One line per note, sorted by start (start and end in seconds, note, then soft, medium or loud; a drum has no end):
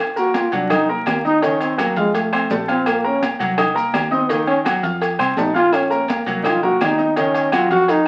0.00 high conga soft
0.16 0.46 A#3 medium
0.16 0.39 F#4 loud
0.16 0.46 A#4 medium
0.16 0.46 A#5 medium
0.16 high conga soft
0.16 maracas medium
0.34 0.54 F4 medium
0.34 cowbell medium
0.34 high conga medium
0.34 low timbale medium
0.34 low agogo medium
0.34 maracas medium
0.52 1.03 C2 medium
0.52 0.67 F#3 medium
0.52 0.73 D4 medium
0.52 0.67 F#4 medium
0.52 0.68 F#5 medium
0.52 cowbell medium
0.52 high conga soft
0.52 low agogo medium
0.52 maracas soft
0.69 0.85 D#4 medium
0.69 0.89 D#4 loud
0.69 0.85 D#5 medium
0.69 0.85 D#6 medium
0.69 cowbell loud
0.69 high conga soft
0.69 low conga medium
0.69 low agogo loud
0.69 claves medium
0.69 maracas medium
0.89 1.07 F#3 soft
0.89 1.18 A#3 medium
0.89 1.19 A#4 medium
0.89 1.19 A#5 medium
0.89 high conga soft
1.06 1.91 D#2 medium
1.06 1.25 A#3 medium
1.06 cowbell medium
1.06 high conga medium
1.06 low timbale medium
1.06 low agogo loud
1.06 claves medium
1.06 maracas medium
1.25 1.39 D#4 medium
1.25 1.46 D#4 loud
1.25 1.39 D#5 medium
1.25 1.40 D#6 medium
1.25 high conga medium
1.25 maracas soft
1.42 1.72 D#3 medium
1.42 1.61 C#4 medium
1.42 1.72 D#4 medium
1.42 1.72 D#5 medium
1.42 cowbell loud
1.42 high conga soft
1.42 low agogo medium
1.42 maracas medium
1.60 1.82 C4 medium
1.60 high conga soft
1.60 low agogo medium
1.60 maracas medium
1.77 1.93 F#3 medium
1.77 1.97 A#3 medium
1.77 1.93 F#4 medium
1.77 1.93 F#5 medium
1.77 cowbell medium
1.77 high conga loud
1.77 low timbale medium
1.77 low agogo loud
1.77 claves medium
1.77 maracas medium
1.96 2.47 F2 medium
1.96 2.17 G#3 medium
1.96 2.26 F4 medium
1.96 2.26 F5 medium
1.96 2.26 F6 medium
1.96 cowbell medium
1.96 high conga soft
1.96 maracas soft
2.14 2.51 A3 medium
2.14 cowbell loud
2.14 high conga soft
2.14 low agogo medium
2.14 maracas medium
2.33 2.47 C4 medium
2.33 2.47 C5 medium
2.33 2.48 C6 medium
2.33 high conga soft
2.33 low agogo loud
2.33 claves medium
2.50 3.34 A#1 medium
2.50 2.65 A3 medium
2.50 2.66 A4 medium
2.50 2.66 A5 medium
2.50 cowbell medium
2.50 high conga medium
2.50 low timbale medium
2.50 maracas medium
2.68 2.90 C4 loud
2.68 2.98 F4 medium
2.68 2.98 F5 medium
2.68 2.98 F6 medium
2.68 high conga medium
2.68 low agogo medium
2.68 maracas soft
2.86 3.07 A#3 medium
2.86 cowbell loud
2.86 high conga soft
2.86 low agogo loud
2.86 claves medium
2.86 maracas medium
3.04 3.34 A#3 medium
3.04 3.23 C#4 loud
3.04 3.34 A#4 medium
3.04 3.34 A#5 medium
3.04 high conga soft
3.23 cowbell medium
3.23 high conga medium
3.23 low timbale medium
3.23 low agogo medium
3.23 maracas medium
3.39 3.90 C2 medium
3.39 3.54 F#3 medium
3.39 3.55 F#4 medium
3.39 3.54 F#5 medium
3.39 cowbell medium
3.39 high conga soft
3.39 low agogo medium
3.39 maracas soft
3.58 3.73 D#4 medium
3.58 3.73 D#5 medium
3.58 3.73 D#6 medium
3.58 cowbell loud
3.58 high conga soft
3.58 low conga medium
3.58 low agogo loud
3.58 claves medium
3.58 maracas medium
3.75 4.05 A#3 medium
3.75 4.05 A#4 medium
3.75 4.05 A#5 medium
3.75 high conga soft
3.75 maracas medium
3.93 4.78 D#2 medium
3.93 cowbell medium
3.93 high conga medium
3.93 low timbale medium
3.93 low agogo loud
3.93 claves medium
3.93 maracas medium
4.11 4.32 C4 medium
4.11 4.26 D#4 medium
4.11 4.26 D#5 medium
4.11 4.26 D#6 medium
4.11 high conga medium
4.11 maracas soft
4.29 4.59 D#3 medium
4.29 4.47 A#3 medium
4.29 4.59 D#4 medium
4.29 4.59 D#5 medium
4.29 cowbell loud
4.29 high conga soft
4.29 low agogo medium
4.29 maracas medium
4.47 4.58 C#4 medium
4.47 high conga soft
4.47 low agogo medium
4.64 4.80 F#3 medium
4.64 4.80 F#4 medium
4.64 4.80 F#5 medium
4.64 cowbell medium
4.64 high conga medium
4.64 low timbale medium
4.64 low agogo loud
4.64 claves medium
4.64 maracas medium
4.83 5.17 F2 loud
4.83 5.13 F4 medium
4.83 5.13 F5 medium
4.83 5.13 F6 medium
4.83 cowbell medium
4.83 high conga soft
4.83 maracas soft
5.02 cowbell loud
5.02 high conga soft
5.02 low agogo medium
5.02 maracas medium
5.19 5.36 C2 medium
5.19 5.34 C4 medium
5.19 5.34 C5 medium
5.19 5.34 C6 medium
5.19 high conga soft
5.19 low agogo loud
5.19 claves medium
5.19 maracas medium
5.37 6.21 A#1 medium
5.37 5.52 A3 medium
5.37 5.55 D#4 medium
5.37 5.52 A4 medium
5.37 5.52 A5 medium
5.37 cowbell medium
5.37 high conga medium
5.37 low timbale medium
5.37 maracas medium
5.54 5.84 F4 medium
5.54 5.77 F4 loud
5.54 5.84 F5 medium
5.54 5.84 F6 medium
5.54 high conga medium
5.54 low agogo medium
5.54 maracas soft
5.73 6.12 C#4 medium
5.73 cowbell loud
5.73 high conga soft
5.73 low agogo loud
5.73 claves medium
5.73 maracas medium
5.90 6.20 A#3 medium
5.90 6.20 A#4 medium
5.90 6.20 A#5 medium
5.90 high conga soft
5.90 maracas medium
6.08 6.49 A#3 medium
6.08 cowbell medium
6.08 high conga loud
6.08 low timbale medium
6.08 low agogo medium
6.08 maracas medium
6.26 6.77 C2 medium
6.26 6.42 F#3 medium
6.26 6.42 F#4 medium
6.26 6.42 F#5 medium
6.26 cowbell medium
6.26 high conga soft
6.26 low agogo medium
6.26 maracas soft
6.43 6.59 D#4 medium
6.43 6.64 F4 loud
6.43 6.59 D#5 medium
6.43 6.59 D#6 medium
6.43 cowbell loud
6.43 high conga soft
6.43 low conga medium
6.43 low agogo loud
6.43 claves medium
6.43 maracas medium
6.63 6.92 A#3 medium
6.63 6.86 F#4 loud
6.63 6.93 A#4 medium
6.63 6.93 A#5 medium
6.63 high conga soft
6.63 low conga medium
6.81 7.65 D#2 medium
6.81 7.20 D#4 medium
6.81 cowbell medium
6.81 high conga medium
6.81 low timbale medium
6.81 low agogo loud
6.81 claves medium
6.81 maracas medium
6.98 7.13 D#4 medium
6.98 7.13 D#5 medium
6.98 7.13 D#6 medium
6.98 high conga medium
6.98 maracas soft
7.16 7.46 D#3 medium
7.16 7.55 C#4 medium
7.16 7.46 D#4 medium
7.16 7.46 D#5 medium
7.16 cowbell medium
7.16 high conga soft
7.16 low agogo medium
7.16 maracas medium
7.34 high conga soft
7.34 low agogo medium
7.34 maracas medium
7.52 7.67 F#3 medium
7.52 7.71 F4 medium
7.52 7.68 F#4 medium
7.52 7.68 F#5 medium
7.52 cowbell medium
7.52 high conga loud
7.52 low timbale medium
7.52 low agogo loud
7.52 claves medium
7.52 maracas medium
7.70 8.04 F2 medium
7.70 8.00 F4 medium
7.70 7.92 F#4 loud
7.70 8.00 F5 medium
7.70 8.00 F6 medium
7.70 cowbell medium
7.70 high conga soft
7.70 maracas soft
7.88 8.08 D#4 loud
7.88 cowbell loud
7.88 high conga soft
7.88 low agogo medium
7.88 maracas medium